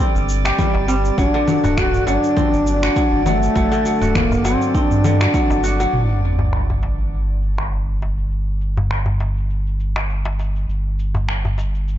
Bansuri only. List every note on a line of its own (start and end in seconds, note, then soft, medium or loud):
0.88 0.95 C4 medium
1.18 1.79 D4 loud
1.78 2.07 F#4 loud
2.07 3.22 D4 loud
3.26 4.17 A3 medium
4.15 4.46 A#3 medium
4.45 4.76 C4 medium
4.75 4.80 D#4 medium
4.79 5.64 D4 medium